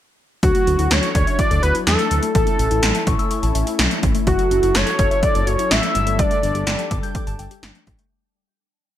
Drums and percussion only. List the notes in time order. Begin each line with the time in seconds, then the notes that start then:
0.43 kick, closed hi-hat
0.55 closed hi-hat
0.67 closed hi-hat
0.79 closed hi-hat
0.91 snare, closed hi-hat
1.03 closed hi-hat
1.15 kick, closed hi-hat
1.27 closed hi-hat
1.39 kick, closed hi-hat
1.51 closed hi-hat
1.63 closed hi-hat
1.75 closed hi-hat
1.87 snare, closed hi-hat
1.99 closed hi-hat
2.11 closed hi-hat
2.23 closed hi-hat
2.35 kick, closed hi-hat
2.47 closed hi-hat
2.59 closed hi-hat
2.71 closed hi-hat
2.83 snare, closed hi-hat
2.95 closed hi-hat
3.07 kick, closed hi-hat
3.19 closed hi-hat
3.31 closed hi-hat
3.43 closed hi-hat
3.55 closed hi-hat
3.67 closed hi-hat
3.79 snare, closed hi-hat
3.91 closed hi-hat
4.03 kick, closed hi-hat
4.15 closed hi-hat
4.27 kick, closed hi-hat
4.39 closed hi-hat
4.51 closed hi-hat
4.63 closed hi-hat
4.75 snare, closed hi-hat
4.87 closed hi-hat
4.99 kick, closed hi-hat
5.11 closed hi-hat
5.23 kick, closed hi-hat
5.35 closed hi-hat
5.47 closed hi-hat
5.59 closed hi-hat
5.71 snare, closed hi-hat
5.83 closed hi-hat
5.95 closed hi-hat
6.07 closed hi-hat
6.19 kick, closed hi-hat
6.31 closed hi-hat
6.43 closed hi-hat
6.55 closed hi-hat
6.67 snare, closed hi-hat
6.79 closed hi-hat
6.91 kick, closed hi-hat
7.03 closed hi-hat
7.15 kick, closed hi-hat
7.27 closed hi-hat
7.39 closed hi-hat
7.51 closed hi-hat
7.63 snare, closed hi-hat
7.75 closed hi-hat
7.87 kick, closed hi-hat
7.99 closed hi-hat